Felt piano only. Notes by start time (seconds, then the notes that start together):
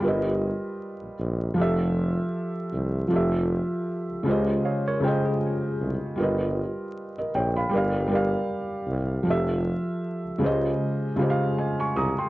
0.00 G3 F4 A#4
0.06 B4 D#5
1.54 F3 F4 G4
1.60 A4 E5
3.08 F3 F4 G4
3.14 A4 E5
4.23 C#3 G#3 F4
4.28 G4 C5 D#5
5.00 C#3 G#3 F4
5.05 C5 D#5 G5
6.16 G3 F4 A#4
6.21 B4 D#5
7.18 A#4 D#5
7.35 C#5 G5
7.56 F5 B5
7.69 G3 G4 A#4
7.75 D5 F5
8.08 G3 G4 A#4
8.13 D5 F5
9.23 F3 F4 G4
9.29 A4 E5
10.38 C#3 G#3 F4
10.43 G4 C5 D#5
11.16 C#3 G#3 F4
11.20 G4 C5 D#5
11.30 F5
11.58 D#5 G#5
11.79 G#5 C#6
11.96 A#5 D#6
12.18 G5 C6